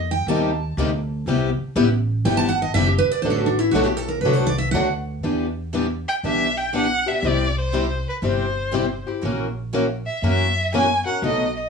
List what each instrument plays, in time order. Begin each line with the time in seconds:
Already playing: upright bass F2
0.11 steel-string acoustic guitar G5
0.27 upright bass D#2, steel-string acoustic guitar C3 G3 A#3 D#4 G4 A5
0.77 upright bass D2, steel-string acoustic guitar C3 G3 A#3 D#4 G4
1.26 upright bass C2, steel-string acoustic guitar C3 G3 B3 E4 G4
1.58 muted upright bass stroke
1.75 upright bass A1, steel-string acoustic guitar C3 G3 B3 E4 G4
2.25 upright bass G1, steel-string acoustic guitar C3 G3 B3 E4 G4 G5
2.37 steel-string acoustic guitar A5
2.49 steel-string acoustic guitar F#5
2.62 steel-string acoustic guitar D#5
2.74 upright bass F#1, steel-string acoustic guitar C3 G3 B3 E4 G4 E5
2.86 steel-string acoustic guitar G4
2.98 steel-string acoustic guitar B4
3.07 muted upright bass stroke
3.12 steel-string acoustic guitar D5
3.22 upright bass A1, steel-string acoustic guitar D3 F#3 A3 D4 F#4 A4 C5
3.30 steel-string acoustic guitar A4
3.40 steel-string acoustic guitar F#4
3.46 steel-string acoustic guitar D4
3.59 steel-string acoustic guitar E4
3.71 upright bass B1, steel-string acoustic guitar D3 F#3 A3 F#4
3.75 steel-string acoustic guitar D4 A4
3.84 steel-string acoustic guitar G4
3.97 steel-string acoustic guitar A4
4.08 steel-string acoustic guitar A#4
4.21 upright bass C2, steel-string acoustic guitar D3 B4
4.25 steel-string acoustic guitar F#3 A3 D4 F#4 A4
4.33 steel-string acoustic guitar C5
4.47 steel-string acoustic guitar D5
4.58 steel-string acoustic guitar E5
4.71 upright bass D2, steel-string acoustic guitar D3 F#3 A3 D4 F#4 F#5
4.75 steel-string acoustic guitar A4
5.23 upright bass E2, steel-string acoustic guitar E3 G3 B3 D4 E4 G4 B4
5.73 steel-string acoustic guitar E3 G3 B3 D4 E4 G4 B4
6.08 violin G5
6.23 upright bass B1, steel-string acoustic guitar E3 G3 B3 D4 E4 G4 B4, violin E5
6.57 violin G5
6.73 steel-string acoustic guitar E3 G3 B3 D4 E4 G4 B4, violin F#5
7.06 steel-string acoustic guitar B3 D4 G4, violin E5
7.23 upright bass C2, steel-string acoustic guitar C3 G3 C4 E4 G4
7.27 violin D5
7.58 violin C5
7.74 steel-string acoustic guitar C3 G3 C4 E4 G4
8.09 violin B4
8.22 upright bass G1, steel-string acoustic guitar C3 G3 C4 E4 G4, violin C5
8.74 steel-string acoustic guitar C3 G3 C4 E4 G4
9.07 steel-string acoustic guitar C4 E4 G4
9.23 upright bass A#1, steel-string acoustic guitar E3 A#3 C#4 F#4 A#4
9.74 steel-string acoustic guitar E3 A#3 C#4 F#4 A#4
10.06 violin E5
10.22 upright bass F#2, steel-string acoustic guitar E3 A#3 C#4 F#4 A#4, violin E5
10.74 steel-string acoustic guitar E3 A#3 C#4 F#4 A#4, violin G#5
11.06 steel-string acoustic guitar C#4 F#4 A#4, violin F#5
11.22 upright bass B1, steel-string acoustic guitar B2 D#3 F#3 A3 B3 D#4 F#4 A4, violin D#5
11.56 violin D#5